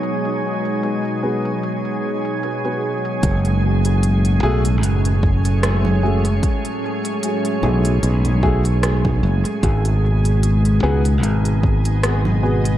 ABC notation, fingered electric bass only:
X:1
M:4/4
L:1/8
Q:"Swing 16ths" 1/4=75
K:F#dor
V:1 name="Fingered electric bass" clef=bass
z8 | F,,,3 B,,, F,,,4 | z3 B,,, B,,,3 F,,, | G,,,3 C,, G,,,4 |]